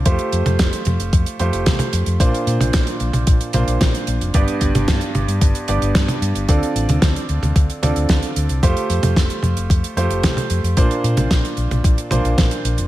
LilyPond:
<<
  \new Staff \with { instrumentName = "Grand piano" } { \time 4/4 \key f \major \tempo 4 = 112 <a f' g' c''>2~ <a f' g' c''>8 <a f' g' c''>4. | <bes, bes d' f' c''>2~ <bes, bes d' f' c''>8 <bes, bes d' f' c''>4. | <g, b d' g' d''>2~ <g, b d' g' d''>8 <g, b d' g' d''>4. | <d c' f' a' d''>2~ <d c' f' a' d''>8 <d c' f' a' d''>4. |
<a f' g' c''>2~ <a f' g' c''>8 <a f' g' c''>4. | <bes, bes d' f' c''>2~ <bes, bes d' f' c''>8 <bes, bes d' f' c''>4. | }
  \new Staff \with { instrumentName = "Fingered electric bass" } { \clef bass \time 4/4 \key f \major f,16 r16 f,16 f,16 f,,16 r16 f,16 f,,16 f,16 r16 f,16 f,,16 c,16 r16 f,16 f,16 | bes,,16 r16 bes,16 bes,,16 bes,,16 r16 bes,,16 bes,,16 bes,,16 r16 bes,,16 bes,,16 r8 bes,,16 f,,16 | g,,16 r16 g,,16 g,,16 g,16 r16 g,,16 g,16 g,,16 r16 g,,16 g,,16 g,16 r16 g,16 g,,16 | d,16 r16 a,,16 d,16 d,16 r16 d,16 d,16 d,16 r16 d,16 d,16 d,16 r16 d,16 c,16 |
f,16 r16 f,16 f,16 f,,16 r16 f,16 f,,16 f,16 r16 f,16 f,,16 c,16 r16 f,16 f,16 | bes,,16 r16 bes,16 bes,,16 bes,,16 r16 bes,,16 bes,,16 bes,,16 r16 bes,,16 bes,,16 bes,,16 r16 bes,,16 f,,16 | }
  \new DrumStaff \with { instrumentName = "Drums" } \drummode { \time 4/4 <hh bd>16 hh16 hh16 <hh tommh>16 <hh bd sn>16 hh16 <hh tommh>16 hh16 <hh bd>16 hh16 hh16 hh16 <hh bd sn>16 <hh tommh>16 hh16 hh16 | <hh bd>16 hh16 hh16 <hh tommh>16 <hh bd sn>16 hh16 hh16 <hh tommh>16 <hh bd>16 hh16 <hh tommh>16 hh16 <hh bd sn>16 hh16 hh16 hh16 | <hh bd>16 hh16 <hh bd>16 <hh tommh>16 <hh bd sn>16 hh16 <hh tommh>16 hh16 <hh bd>16 hh16 hh16 hh16 <hh bd sn>16 <hh tommh>16 hh16 hh16 | <hh bd>16 hh16 hh16 <hh tommh>16 <hh bd sn>16 hh16 hh16 <hh tommh>16 <hh bd>16 hh16 <hh tommh>16 hh16 <hh bd sn>16 hh16 hh16 hh16 |
<hh bd>16 hh16 hh16 <hh tommh>16 <hh bd sn>16 hh16 <hh tommh>16 hh16 <hh bd>16 hh16 hh16 hh16 <hh bd sn>16 <hh tommh>16 hh16 hh16 | <hh bd>16 hh16 hh16 <hh tommh>16 <hh bd sn>16 hh16 hh16 <hh tommh>16 <hh bd>16 hh16 <hh tommh>16 hh16 <hh bd sn>16 hh16 hh16 hh16 | }
>>